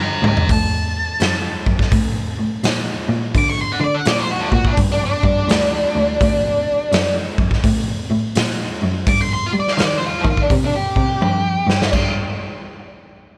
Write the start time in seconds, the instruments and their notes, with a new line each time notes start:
0.02 lead electric guitar G5 A#5
0.22 cello C#2, mid tom
0.27 lead electric guitar G5 A#5
0.37 floor tom
0.49 cello D2, lead electric guitar A5, kick, open hi-hat
1.20 cello F#2, snare, open hi-hat
1.66 cello F#2, kick
1.79 kick, snare
1.92 cello A2, kick, open hi-hat
2.39 cello A2
2.63 cello A#2, snare, open hi-hat
3.09 cello A#2
3.35 cello D3, lead electric guitar D6, kick, open hi-hat
3.50 lead electric guitar C#6
3.61 lead electric guitar C6
3.73 lead electric guitar F#5
3.80 cello D3, lead electric guitar D5
3.94 lead electric guitar F#5
4.05 cello A#2, lead electric guitar D5, snare, open hi-hat
4.19 lead electric guitar C5
4.31 lead electric guitar F#4
4.40 lead electric guitar C5
4.52 cello A#2, lead electric guitar F#4, kick
4.65 lead electric guitar D4, kick
4.77 cello G2, kick, open hi-hat
4.92 lead electric guitar D4
5.05 lead electric guitar D4
5.23 cello G2, kick
5.48 cello D2, snare, open hi-hat
5.95 cello D2
6.21 cello D2, kick, open hi-hat
6.92 cello F#2, snare, open hi-hat
7.38 cello F#2, kick
7.51 kick, snare
7.64 cello A2, kick, open hi-hat
8.10 cello A2
8.35 cello A#2, snare, open hi-hat
8.82 cello F#2
9.07 cello G2, lead electric guitar D6, kick, open hi-hat
9.22 lead electric guitar C6
9.33 lead electric guitar C6
9.46 lead electric guitar F5
9.53 cello G3
9.60 lead electric guitar D5
9.68 snare
9.72 lead electric guitar F5
9.77 cello D#3, snare, open hi-hat
9.85 lead electric guitar D5
9.97 lead electric guitar C5
10.06 lead electric guitar F4
10.21 cello D#3, lead electric guitar C5, kick
10.30 lead electric guitar F4
10.37 kick
10.42 lead electric guitar D4
10.50 cello C3, kick, open hi-hat
10.65 lead electric guitar D4
10.76 lead electric guitar G4
10.96 cello C3, kick
11.21 cello G2, high tom
11.67 cello G2, snare
11.82 snare
11.93 cello G2, kick, crash